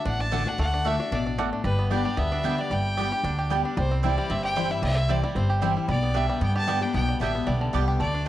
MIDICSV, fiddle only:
0, 0, Header, 1, 2, 480
1, 0, Start_track
1, 0, Key_signature, 1, "major"
1, 0, Tempo, 264784
1, 1070, Time_signature, 4, 2, 24, 8
1, 15015, End_track
2, 0, Start_track
2, 0, Title_t, "Fiddle"
2, 0, Program_c, 0, 110
2, 113, Note_on_c, 0, 78, 102
2, 377, Note_on_c, 0, 81, 112
2, 405, Note_off_c, 0, 78, 0
2, 875, Note_on_c, 0, 78, 109
2, 902, Note_off_c, 0, 81, 0
2, 1082, Note_off_c, 0, 78, 0
2, 1099, Note_on_c, 0, 78, 112
2, 1587, Note_on_c, 0, 76, 97
2, 1615, Note_off_c, 0, 78, 0
2, 2072, Note_on_c, 0, 74, 85
2, 2099, Note_off_c, 0, 76, 0
2, 2533, Note_off_c, 0, 74, 0
2, 3001, Note_on_c, 0, 71, 89
2, 3444, Note_off_c, 0, 71, 0
2, 3476, Note_on_c, 0, 74, 92
2, 3958, Note_on_c, 0, 76, 99
2, 3985, Note_off_c, 0, 74, 0
2, 4724, Note_on_c, 0, 74, 99
2, 4751, Note_off_c, 0, 76, 0
2, 4937, Note_on_c, 0, 79, 109
2, 4964, Note_off_c, 0, 74, 0
2, 6366, Note_off_c, 0, 79, 0
2, 6862, Note_on_c, 0, 72, 85
2, 7296, Note_off_c, 0, 72, 0
2, 7337, Note_on_c, 0, 74, 93
2, 7804, Note_on_c, 0, 76, 108
2, 7831, Note_off_c, 0, 74, 0
2, 8047, Note_off_c, 0, 76, 0
2, 8058, Note_on_c, 0, 79, 112
2, 8540, Note_on_c, 0, 76, 97
2, 8568, Note_off_c, 0, 79, 0
2, 8749, Note_off_c, 0, 76, 0
2, 8760, Note_on_c, 0, 76, 118
2, 9243, Note_on_c, 0, 74, 97
2, 9270, Note_off_c, 0, 76, 0
2, 9699, Note_off_c, 0, 74, 0
2, 9710, Note_on_c, 0, 72, 80
2, 10157, Note_off_c, 0, 72, 0
2, 10697, Note_on_c, 0, 74, 99
2, 11183, Note_on_c, 0, 76, 92
2, 11211, Note_off_c, 0, 74, 0
2, 11647, Note_off_c, 0, 76, 0
2, 11654, Note_on_c, 0, 79, 94
2, 11885, Note_off_c, 0, 79, 0
2, 11895, Note_on_c, 0, 81, 121
2, 12372, Note_on_c, 0, 79, 104
2, 12399, Note_off_c, 0, 81, 0
2, 12573, Note_off_c, 0, 79, 0
2, 12584, Note_on_c, 0, 79, 111
2, 13033, Note_off_c, 0, 79, 0
2, 13072, Note_on_c, 0, 76, 88
2, 13539, Note_on_c, 0, 74, 75
2, 13566, Note_off_c, 0, 76, 0
2, 14024, Note_off_c, 0, 74, 0
2, 14516, Note_on_c, 0, 74, 98
2, 14958, Note_off_c, 0, 74, 0
2, 15015, End_track
0, 0, End_of_file